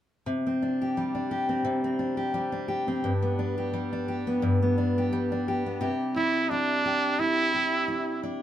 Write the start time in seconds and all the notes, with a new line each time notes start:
0.26 C3
0.47 C4
0.62 D4
0.82 G4
0.97 G3
1.15 D4
1.31 G4
1.49 C4
1.65 C3
1.84 C4
1.99 D4
2.17 G4
2.34 G3
2.52 D4
2.68 G4
2.88 C4
3.04 G2
3.22 B3
3.39 D4
3.58 G4
3.73 G3
3.93 D4
4.08 G4
4.27 B3
4.42 G2
4.62 B3
4.78 D4
4.98 G4
5.13 G3
5.32 D4
5.48 G4
5.66 B3
5.81 C3 G4
6.16 E4
6.50 D4
6.86 G4
7.19 E4
7.54 G4
7.88 E4
8.23 D4